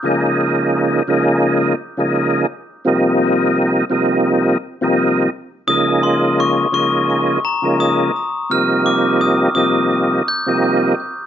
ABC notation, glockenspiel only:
X:1
M:4/4
L:1/16
Q:"Swing 16ths" 1/4=85
K:Fphr
V:1 name="Glockenspiel"
z16 | z16 | e'2 c'2 d'2 d'4 b2 e'2 z2 | f'2 =d'2 e'2 e'4 =g'3 z3 |]